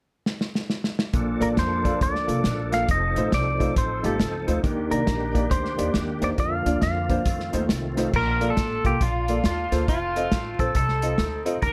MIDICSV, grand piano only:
0, 0, Header, 1, 2, 480
1, 0, Start_track
1, 0, Key_signature, -2, "major"
1, 0, Tempo, 436999
1, 1248, Time_signature, 4, 2, 24, 8
1, 12881, End_track
2, 0, Start_track
2, 0, Title_t, "Grand piano"
2, 0, Program_c, 0, 0
2, 1242, Note_on_c, 0, 46, 69
2, 1540, Note_on_c, 0, 58, 69
2, 1543, Note_on_c, 0, 69, 62
2, 1545, Note_on_c, 0, 65, 65
2, 1551, Note_on_c, 0, 74, 76
2, 1645, Note_off_c, 0, 58, 0
2, 1646, Note_off_c, 0, 69, 0
2, 1647, Note_off_c, 0, 65, 0
2, 1650, Note_off_c, 0, 74, 0
2, 1985, Note_off_c, 0, 46, 0
2, 2018, Note_on_c, 0, 58, 67
2, 2022, Note_on_c, 0, 65, 66
2, 2025, Note_on_c, 0, 69, 68
2, 2030, Note_on_c, 0, 74, 72
2, 2124, Note_off_c, 0, 58, 0
2, 2126, Note_off_c, 0, 65, 0
2, 2127, Note_off_c, 0, 69, 0
2, 2130, Note_off_c, 0, 74, 0
2, 2497, Note_on_c, 0, 58, 59
2, 2499, Note_on_c, 0, 65, 56
2, 2506, Note_on_c, 0, 69, 58
2, 2508, Note_on_c, 0, 74, 64
2, 2604, Note_off_c, 0, 58, 0
2, 2605, Note_off_c, 0, 65, 0
2, 2608, Note_off_c, 0, 69, 0
2, 2609, Note_off_c, 0, 74, 0
2, 2986, Note_on_c, 0, 58, 72
2, 2987, Note_on_c, 0, 65, 64
2, 2993, Note_on_c, 0, 77, 80
2, 2995, Note_on_c, 0, 69, 60
2, 3089, Note_off_c, 0, 58, 0
2, 3089, Note_off_c, 0, 65, 0
2, 3092, Note_off_c, 0, 77, 0
2, 3093, Note_off_c, 0, 69, 0
2, 3480, Note_on_c, 0, 57, 70
2, 3485, Note_on_c, 0, 63, 65
2, 3486, Note_on_c, 0, 65, 63
2, 3491, Note_on_c, 0, 72, 81
2, 3576, Note_off_c, 0, 57, 0
2, 3578, Note_off_c, 0, 63, 0
2, 3579, Note_off_c, 0, 65, 0
2, 3581, Note_off_c, 0, 72, 0
2, 3948, Note_on_c, 0, 57, 65
2, 3952, Note_on_c, 0, 63, 66
2, 3955, Note_on_c, 0, 65, 64
2, 3960, Note_on_c, 0, 72, 74
2, 4050, Note_off_c, 0, 57, 0
2, 4052, Note_off_c, 0, 63, 0
2, 4053, Note_off_c, 0, 65, 0
2, 4055, Note_off_c, 0, 72, 0
2, 4426, Note_on_c, 0, 57, 66
2, 4429, Note_on_c, 0, 63, 55
2, 4429, Note_on_c, 0, 65, 64
2, 4435, Note_on_c, 0, 67, 71
2, 4529, Note_off_c, 0, 57, 0
2, 4530, Note_off_c, 0, 63, 0
2, 4530, Note_off_c, 0, 65, 0
2, 4533, Note_off_c, 0, 67, 0
2, 4909, Note_on_c, 0, 57, 64
2, 4915, Note_on_c, 0, 63, 59
2, 4919, Note_on_c, 0, 65, 63
2, 4921, Note_on_c, 0, 72, 74
2, 5010, Note_off_c, 0, 57, 0
2, 5013, Note_off_c, 0, 63, 0
2, 5015, Note_off_c, 0, 65, 0
2, 5016, Note_off_c, 0, 72, 0
2, 5090, Note_on_c, 0, 51, 78
2, 5387, Note_on_c, 0, 58, 70
2, 5390, Note_on_c, 0, 63, 64
2, 5397, Note_on_c, 0, 67, 63
2, 5398, Note_on_c, 0, 74, 78
2, 5489, Note_off_c, 0, 58, 0
2, 5491, Note_off_c, 0, 63, 0
2, 5495, Note_off_c, 0, 67, 0
2, 5495, Note_off_c, 0, 74, 0
2, 5829, Note_off_c, 0, 51, 0
2, 5869, Note_on_c, 0, 58, 73
2, 5872, Note_on_c, 0, 63, 59
2, 5874, Note_on_c, 0, 67, 70
2, 5878, Note_on_c, 0, 74, 76
2, 5971, Note_off_c, 0, 58, 0
2, 5972, Note_off_c, 0, 63, 0
2, 5973, Note_off_c, 0, 67, 0
2, 5975, Note_off_c, 0, 74, 0
2, 6343, Note_on_c, 0, 58, 64
2, 6348, Note_on_c, 0, 63, 57
2, 6352, Note_on_c, 0, 67, 59
2, 6353, Note_on_c, 0, 74, 72
2, 6447, Note_off_c, 0, 58, 0
2, 6450, Note_off_c, 0, 63, 0
2, 6452, Note_off_c, 0, 67, 0
2, 6452, Note_off_c, 0, 74, 0
2, 6822, Note_on_c, 0, 58, 70
2, 6830, Note_on_c, 0, 63, 61
2, 6830, Note_on_c, 0, 67, 58
2, 6837, Note_on_c, 0, 72, 77
2, 6927, Note_off_c, 0, 58, 0
2, 6931, Note_off_c, 0, 63, 0
2, 6931, Note_off_c, 0, 67, 0
2, 6934, Note_off_c, 0, 72, 0
2, 7315, Note_on_c, 0, 58, 69
2, 7316, Note_on_c, 0, 62, 66
2, 7320, Note_on_c, 0, 65, 65
2, 7324, Note_on_c, 0, 74, 81
2, 7413, Note_off_c, 0, 58, 0
2, 7414, Note_off_c, 0, 62, 0
2, 7416, Note_off_c, 0, 65, 0
2, 7418, Note_off_c, 0, 74, 0
2, 7792, Note_on_c, 0, 58, 67
2, 7793, Note_on_c, 0, 62, 65
2, 7797, Note_on_c, 0, 65, 58
2, 7802, Note_on_c, 0, 72, 81
2, 7892, Note_off_c, 0, 58, 0
2, 7893, Note_off_c, 0, 62, 0
2, 7894, Note_off_c, 0, 65, 0
2, 7897, Note_off_c, 0, 72, 0
2, 8270, Note_on_c, 0, 63, 70
2, 8271, Note_on_c, 0, 57, 68
2, 8279, Note_on_c, 0, 65, 66
2, 8280, Note_on_c, 0, 72, 82
2, 8371, Note_off_c, 0, 57, 0
2, 8371, Note_off_c, 0, 63, 0
2, 8375, Note_off_c, 0, 65, 0
2, 8376, Note_off_c, 0, 72, 0
2, 8753, Note_on_c, 0, 57, 79
2, 8756, Note_on_c, 0, 63, 71
2, 8761, Note_on_c, 0, 65, 66
2, 8767, Note_on_c, 0, 72, 80
2, 8852, Note_off_c, 0, 57, 0
2, 8854, Note_off_c, 0, 63, 0
2, 8856, Note_off_c, 0, 65, 0
2, 8859, Note_off_c, 0, 72, 0
2, 8945, Note_on_c, 0, 46, 62
2, 9232, Note_on_c, 0, 58, 68
2, 9234, Note_on_c, 0, 65, 65
2, 9238, Note_on_c, 0, 69, 59
2, 9241, Note_on_c, 0, 74, 76
2, 9332, Note_off_c, 0, 58, 0
2, 9333, Note_off_c, 0, 65, 0
2, 9335, Note_off_c, 0, 69, 0
2, 9336, Note_off_c, 0, 74, 0
2, 9677, Note_off_c, 0, 46, 0
2, 9713, Note_on_c, 0, 58, 72
2, 9718, Note_on_c, 0, 69, 64
2, 9721, Note_on_c, 0, 65, 61
2, 9728, Note_on_c, 0, 77, 78
2, 9812, Note_off_c, 0, 58, 0
2, 9815, Note_off_c, 0, 69, 0
2, 9816, Note_off_c, 0, 65, 0
2, 9819, Note_off_c, 0, 77, 0
2, 10200, Note_on_c, 0, 58, 61
2, 10205, Note_on_c, 0, 65, 57
2, 10209, Note_on_c, 0, 69, 60
2, 10216, Note_on_c, 0, 74, 68
2, 10296, Note_off_c, 0, 58, 0
2, 10298, Note_off_c, 0, 65, 0
2, 10300, Note_off_c, 0, 69, 0
2, 10303, Note_off_c, 0, 74, 0
2, 10673, Note_on_c, 0, 58, 62
2, 10676, Note_on_c, 0, 65, 59
2, 10679, Note_on_c, 0, 69, 59
2, 10680, Note_on_c, 0, 72, 76
2, 10772, Note_off_c, 0, 58, 0
2, 10773, Note_off_c, 0, 65, 0
2, 10775, Note_off_c, 0, 69, 0
2, 10775, Note_off_c, 0, 72, 0
2, 11162, Note_on_c, 0, 60, 67
2, 11162, Note_on_c, 0, 69, 62
2, 11165, Note_on_c, 0, 65, 61
2, 11170, Note_on_c, 0, 75, 78
2, 11255, Note_off_c, 0, 69, 0
2, 11256, Note_off_c, 0, 60, 0
2, 11257, Note_off_c, 0, 65, 0
2, 11260, Note_off_c, 0, 75, 0
2, 11633, Note_on_c, 0, 60, 68
2, 11637, Note_on_c, 0, 65, 61
2, 11641, Note_on_c, 0, 69, 60
2, 11645, Note_on_c, 0, 72, 70
2, 11731, Note_off_c, 0, 60, 0
2, 11733, Note_off_c, 0, 65, 0
2, 11735, Note_off_c, 0, 69, 0
2, 11737, Note_off_c, 0, 72, 0
2, 12110, Note_on_c, 0, 60, 61
2, 12116, Note_on_c, 0, 65, 54
2, 12117, Note_on_c, 0, 69, 58
2, 12117, Note_on_c, 0, 75, 70
2, 12209, Note_off_c, 0, 60, 0
2, 12212, Note_off_c, 0, 65, 0
2, 12212, Note_off_c, 0, 69, 0
2, 12213, Note_off_c, 0, 75, 0
2, 12581, Note_on_c, 0, 60, 83
2, 12582, Note_on_c, 0, 65, 72
2, 12584, Note_on_c, 0, 69, 79
2, 12590, Note_on_c, 0, 75, 81
2, 12684, Note_off_c, 0, 60, 0
2, 12684, Note_off_c, 0, 65, 0
2, 12686, Note_off_c, 0, 69, 0
2, 12688, Note_off_c, 0, 75, 0
2, 12770, Note_on_c, 0, 51, 62
2, 12881, Note_off_c, 0, 51, 0
2, 12881, End_track
0, 0, End_of_file